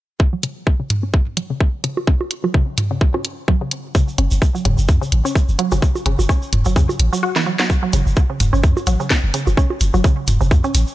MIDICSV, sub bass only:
0, 0, Header, 1, 2, 480
1, 0, Start_track
1, 0, Key_signature, 3, "minor"
1, 0, Tempo, 468750
1, 205, Time_signature, 4, 2, 24, 8
1, 11211, End_track
2, 0, Start_track
2, 0, Title_t, "Sub bass"
2, 0, Program_c, 0, 38
2, 4285, Note_on_c, 0, 30, 90
2, 4388, Note_off_c, 0, 30, 0
2, 4419, Note_on_c, 0, 30, 84
2, 4501, Note_off_c, 0, 30, 0
2, 4763, Note_on_c, 0, 28, 99
2, 4868, Note_off_c, 0, 28, 0
2, 4898, Note_on_c, 0, 30, 84
2, 5004, Note_on_c, 0, 42, 85
2, 5019, Note_off_c, 0, 30, 0
2, 5108, Note_off_c, 0, 42, 0
2, 5244, Note_on_c, 0, 33, 82
2, 5348, Note_off_c, 0, 33, 0
2, 5618, Note_on_c, 0, 30, 92
2, 5700, Note_off_c, 0, 30, 0
2, 5858, Note_on_c, 0, 30, 84
2, 5940, Note_off_c, 0, 30, 0
2, 6204, Note_on_c, 0, 30, 90
2, 6308, Note_off_c, 0, 30, 0
2, 6337, Note_on_c, 0, 30, 81
2, 6420, Note_off_c, 0, 30, 0
2, 6684, Note_on_c, 0, 28, 100
2, 6788, Note_off_c, 0, 28, 0
2, 6818, Note_on_c, 0, 30, 86
2, 6923, Note_on_c, 0, 42, 85
2, 6938, Note_off_c, 0, 30, 0
2, 7028, Note_off_c, 0, 42, 0
2, 7162, Note_on_c, 0, 33, 89
2, 7267, Note_off_c, 0, 33, 0
2, 8123, Note_on_c, 0, 30, 96
2, 8228, Note_off_c, 0, 30, 0
2, 8256, Note_on_c, 0, 30, 80
2, 8339, Note_off_c, 0, 30, 0
2, 8603, Note_on_c, 0, 28, 97
2, 8708, Note_off_c, 0, 28, 0
2, 8737, Note_on_c, 0, 30, 87
2, 8843, Note_on_c, 0, 42, 85
2, 8859, Note_off_c, 0, 30, 0
2, 8948, Note_off_c, 0, 42, 0
2, 9083, Note_on_c, 0, 33, 86
2, 9188, Note_off_c, 0, 33, 0
2, 9457, Note_on_c, 0, 30, 91
2, 9540, Note_off_c, 0, 30, 0
2, 9697, Note_on_c, 0, 30, 85
2, 9780, Note_off_c, 0, 30, 0
2, 10044, Note_on_c, 0, 30, 96
2, 10148, Note_off_c, 0, 30, 0
2, 10178, Note_on_c, 0, 30, 85
2, 10260, Note_off_c, 0, 30, 0
2, 10524, Note_on_c, 0, 28, 102
2, 10628, Note_off_c, 0, 28, 0
2, 10658, Note_on_c, 0, 30, 83
2, 10764, Note_on_c, 0, 42, 85
2, 10779, Note_off_c, 0, 30, 0
2, 10868, Note_off_c, 0, 42, 0
2, 11004, Note_on_c, 0, 33, 86
2, 11108, Note_off_c, 0, 33, 0
2, 11211, End_track
0, 0, End_of_file